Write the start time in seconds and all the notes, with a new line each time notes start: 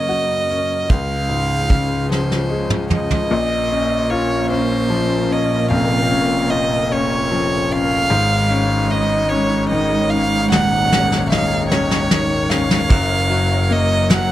Already playing: F#2 C#3 F#3 A#3 C#4 A#4 D#5
0.09 F#4, closed hi-hat
0.50 C#4, closed hi-hat
0.89 C#2 C#3 G#3 C#4 F4 F5, kick, closed hi-hat
1.29 G#2, closed hi-hat
1.70 C#3, kick, closed hi-hat
2.11 F3 C5, snare
2.31 snare
2.51 G#3
2.70 mid tom
2.90 F3 D#5, mid tom
3.11 floor tom
3.28 A#1 A#2 A#3 C#4 A#4
3.72 C#4
4.10 F4 C#5
4.51 C#4 C5
4.90 F3
5.31 C#4 D#5
5.70 F1 F2 F5
6.11 C#4
6.50 F4 D#5
6.91 C#4 C#5
7.32 F3
7.71 C#4 F5
8.10 G#1 G#2 G#3 D#4 C#5
8.50 C#4
8.91 D#4 D#5
9.29 C#4 C#5
9.69 D#3 D#5
10.10 C#4 F5
10.51 D#1 D#2 F#5, snare
10.92 C#4, snare
11.12 snare
11.30 D#4 F5, snare
11.70 C#4 C#5, snare
11.91 snare
12.11 D#3, snare
12.50 C#4 F5, snare
12.71 snare
12.89 F#1 F#2 F#3 A#4, kick, ride
13.29 F#3, ride
13.69 A#3 D#5, ride
14.09 F#3 F#5, snare, ride